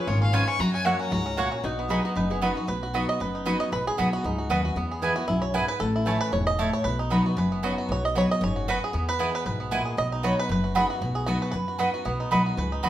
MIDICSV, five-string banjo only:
0, 0, Header, 1, 2, 480
1, 0, Start_track
1, 0, Key_signature, 5, "major"
1, 0, Tempo, 260530
1, 1098, Time_signature, 4, 2, 24, 8
1, 23752, End_track
2, 0, Start_track
2, 0, Title_t, "Five-string banjo"
2, 0, Program_c, 0, 105
2, 0, Note_on_c, 0, 61, 71
2, 0, Note_on_c, 0, 68, 61
2, 137, Note_on_c, 0, 65, 71
2, 346, Note_off_c, 0, 68, 0
2, 378, Note_off_c, 0, 61, 0
2, 400, Note_on_c, 0, 61, 60
2, 618, Note_on_c, 0, 71, 58
2, 826, Note_off_c, 0, 65, 0
2, 856, Note_off_c, 0, 61, 0
2, 878, Note_on_c, 0, 61, 70
2, 1098, Note_off_c, 0, 61, 0
2, 1098, Note_off_c, 0, 71, 0
2, 1100, Note_on_c, 0, 66, 72
2, 1367, Note_on_c, 0, 61, 66
2, 1571, Note_off_c, 0, 66, 0
2, 1578, Note_on_c, 0, 66, 64
2, 1811, Note_off_c, 0, 61, 0
2, 1834, Note_on_c, 0, 61, 67
2, 2064, Note_off_c, 0, 66, 0
2, 2064, Note_on_c, 0, 66, 74
2, 2297, Note_off_c, 0, 61, 0
2, 2319, Note_on_c, 0, 61, 65
2, 2551, Note_off_c, 0, 66, 0
2, 2551, Note_on_c, 0, 66, 52
2, 2775, Note_off_c, 0, 61, 0
2, 2797, Note_on_c, 0, 61, 64
2, 3017, Note_off_c, 0, 66, 0
2, 3018, Note_off_c, 0, 61, 0
2, 3024, Note_on_c, 0, 66, 68
2, 3295, Note_on_c, 0, 59, 66
2, 3515, Note_on_c, 0, 63, 64
2, 3710, Note_off_c, 0, 66, 0
2, 3755, Note_off_c, 0, 59, 0
2, 3777, Note_on_c, 0, 59, 66
2, 3986, Note_on_c, 0, 71, 67
2, 4195, Note_off_c, 0, 63, 0
2, 4233, Note_off_c, 0, 59, 0
2, 4255, Note_on_c, 0, 59, 64
2, 4469, Note_on_c, 0, 63, 54
2, 4671, Note_off_c, 0, 71, 0
2, 4734, Note_on_c, 0, 66, 62
2, 4904, Note_off_c, 0, 59, 0
2, 4944, Note_on_c, 0, 71, 77
2, 4945, Note_off_c, 0, 63, 0
2, 4947, Note_off_c, 0, 66, 0
2, 5213, Note_on_c, 0, 66, 60
2, 5448, Note_on_c, 0, 59, 55
2, 5685, Note_off_c, 0, 66, 0
2, 5693, Note_on_c, 0, 75, 100
2, 5704, Note_off_c, 0, 71, 0
2, 5892, Note_off_c, 0, 75, 0
2, 5914, Note_on_c, 0, 71, 65
2, 6169, Note_on_c, 0, 63, 53
2, 6385, Note_on_c, 0, 66, 57
2, 6625, Note_off_c, 0, 66, 0
2, 6633, Note_on_c, 0, 75, 97
2, 6821, Note_off_c, 0, 63, 0
2, 6859, Note_off_c, 0, 75, 0
2, 6866, Note_off_c, 0, 71, 0
2, 6866, Note_on_c, 0, 71, 103
2, 7129, Note_off_c, 0, 71, 0
2, 7136, Note_on_c, 0, 68, 95
2, 7330, Note_off_c, 0, 59, 0
2, 7337, Note_on_c, 0, 59, 56
2, 7576, Note_off_c, 0, 68, 0
2, 7612, Note_on_c, 0, 66, 87
2, 7812, Note_off_c, 0, 66, 0
2, 7839, Note_on_c, 0, 63, 66
2, 8028, Note_off_c, 0, 59, 0
2, 8078, Note_on_c, 0, 66, 63
2, 8278, Note_off_c, 0, 63, 0
2, 8310, Note_on_c, 0, 71, 61
2, 8541, Note_off_c, 0, 66, 0
2, 8563, Note_on_c, 0, 66, 61
2, 8783, Note_off_c, 0, 66, 0
2, 8786, Note_off_c, 0, 71, 0
2, 8788, Note_on_c, 0, 59, 76
2, 9054, Note_on_c, 0, 68, 63
2, 9249, Note_off_c, 0, 59, 0
2, 9271, Note_on_c, 0, 59, 62
2, 9502, Note_on_c, 0, 66, 91
2, 9704, Note_off_c, 0, 68, 0
2, 9716, Note_off_c, 0, 66, 0
2, 9723, Note_on_c, 0, 64, 81
2, 9955, Note_off_c, 0, 59, 0
2, 9980, Note_on_c, 0, 73, 90
2, 10001, Note_off_c, 0, 64, 0
2, 10228, Note_off_c, 0, 73, 0
2, 10235, Note_on_c, 0, 68, 53
2, 10471, Note_on_c, 0, 71, 91
2, 10677, Note_off_c, 0, 68, 0
2, 10684, Note_on_c, 0, 69, 103
2, 10704, Note_off_c, 0, 71, 0
2, 10974, Note_on_c, 0, 64, 71
2, 11140, Note_off_c, 0, 69, 0
2, 11193, Note_on_c, 0, 61, 55
2, 11434, Note_on_c, 0, 71, 105
2, 11625, Note_off_c, 0, 64, 0
2, 11658, Note_on_c, 0, 73, 90
2, 11666, Note_off_c, 0, 71, 0
2, 11876, Note_off_c, 0, 61, 0
2, 11902, Note_off_c, 0, 73, 0
2, 11916, Note_on_c, 0, 75, 104
2, 12148, Note_on_c, 0, 57, 52
2, 12399, Note_off_c, 0, 75, 0
2, 12406, Note_on_c, 0, 73, 93
2, 12605, Note_on_c, 0, 71, 92
2, 12626, Note_off_c, 0, 57, 0
2, 12631, Note_off_c, 0, 73, 0
2, 12855, Note_off_c, 0, 71, 0
2, 12883, Note_on_c, 0, 63, 66
2, 13109, Note_on_c, 0, 59, 56
2, 13373, Note_on_c, 0, 66, 51
2, 13539, Note_off_c, 0, 63, 0
2, 13598, Note_on_c, 0, 71, 68
2, 13847, Note_off_c, 0, 59, 0
2, 13854, Note_on_c, 0, 59, 55
2, 14024, Note_off_c, 0, 66, 0
2, 14073, Note_on_c, 0, 54, 59
2, 14338, Note_on_c, 0, 66, 71
2, 14588, Note_on_c, 0, 73, 105
2, 14644, Note_off_c, 0, 59, 0
2, 14644, Note_off_c, 0, 71, 0
2, 14756, Note_off_c, 0, 54, 0
2, 14809, Note_off_c, 0, 73, 0
2, 14825, Note_off_c, 0, 66, 0
2, 14832, Note_on_c, 0, 75, 93
2, 15043, Note_off_c, 0, 75, 0
2, 15067, Note_on_c, 0, 73, 102
2, 15288, Note_off_c, 0, 73, 0
2, 15318, Note_on_c, 0, 75, 109
2, 15526, Note_off_c, 0, 75, 0
2, 15543, Note_on_c, 0, 73, 91
2, 15772, Note_on_c, 0, 66, 60
2, 16016, Note_off_c, 0, 73, 0
2, 16023, Note_on_c, 0, 71, 89
2, 16270, Note_off_c, 0, 71, 0
2, 16287, Note_on_c, 0, 68, 86
2, 16423, Note_off_c, 0, 66, 0
2, 16472, Note_on_c, 0, 59, 72
2, 16742, Note_on_c, 0, 71, 101
2, 16758, Note_off_c, 0, 68, 0
2, 16947, Note_off_c, 0, 59, 0
2, 16954, Note_on_c, 0, 59, 63
2, 17178, Note_off_c, 0, 71, 0
2, 17225, Note_on_c, 0, 71, 104
2, 17409, Note_off_c, 0, 71, 0
2, 17431, Note_on_c, 0, 71, 69
2, 17680, Note_off_c, 0, 59, 0
2, 17687, Note_on_c, 0, 59, 54
2, 17907, Note_on_c, 0, 56, 54
2, 18155, Note_on_c, 0, 68, 59
2, 18377, Note_off_c, 0, 68, 0
2, 18383, Note_off_c, 0, 56, 0
2, 18393, Note_on_c, 0, 75, 112
2, 18651, Note_on_c, 0, 63, 68
2, 18869, Note_off_c, 0, 75, 0
2, 18877, Note_on_c, 0, 73, 106
2, 18932, Note_off_c, 0, 59, 0
2, 18932, Note_off_c, 0, 71, 0
2, 19135, Note_off_c, 0, 73, 0
2, 19151, Note_on_c, 0, 71, 96
2, 19300, Note_off_c, 0, 63, 0
2, 19351, Note_off_c, 0, 71, 0
2, 19373, Note_on_c, 0, 71, 86
2, 19601, Note_on_c, 0, 66, 58
2, 19846, Note_on_c, 0, 68, 82
2, 19849, Note_off_c, 0, 71, 0
2, 20060, Note_off_c, 0, 66, 0
2, 20075, Note_off_c, 0, 68, 0
2, 20083, Note_on_c, 0, 66, 68
2, 20278, Note_off_c, 0, 66, 0
2, 20300, Note_on_c, 0, 66, 60
2, 20544, Note_on_c, 0, 68, 81
2, 20731, Note_off_c, 0, 66, 0
2, 20753, Note_on_c, 0, 66, 85
2, 20777, Note_off_c, 0, 68, 0
2, 21040, Note_on_c, 0, 71, 57
2, 21214, Note_off_c, 0, 71, 0
2, 21214, Note_on_c, 0, 71, 86
2, 21259, Note_off_c, 0, 66, 0
2, 21519, Note_on_c, 0, 66, 56
2, 21710, Note_off_c, 0, 71, 0
2, 21732, Note_on_c, 0, 71, 56
2, 21975, Note_off_c, 0, 66, 0
2, 21997, Note_on_c, 0, 66, 64
2, 22210, Note_on_c, 0, 59, 78
2, 22421, Note_off_c, 0, 71, 0
2, 22479, Note_on_c, 0, 63, 59
2, 22651, Note_off_c, 0, 66, 0
2, 22706, Note_on_c, 0, 71, 63
2, 22900, Note_off_c, 0, 59, 0
2, 22959, Note_on_c, 0, 66, 55
2, 23132, Note_off_c, 0, 63, 0
2, 23162, Note_off_c, 0, 71, 0
2, 23184, Note_on_c, 0, 71, 69
2, 23437, Note_on_c, 0, 63, 60
2, 23612, Note_off_c, 0, 66, 0
2, 23658, Note_on_c, 0, 66, 56
2, 23752, Note_off_c, 0, 63, 0
2, 23752, Note_off_c, 0, 66, 0
2, 23752, Note_off_c, 0, 71, 0
2, 23752, End_track
0, 0, End_of_file